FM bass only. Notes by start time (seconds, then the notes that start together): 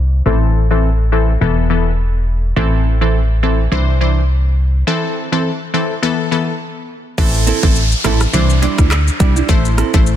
Already playing: C2
0.26 A1
1.41 E1
2.57 A1
3.72 C2
7.18 A1
7.63 A1
8.05 A1
8.33 C2
8.79 D2
9.20 C2
9.49 A1
9.94 A1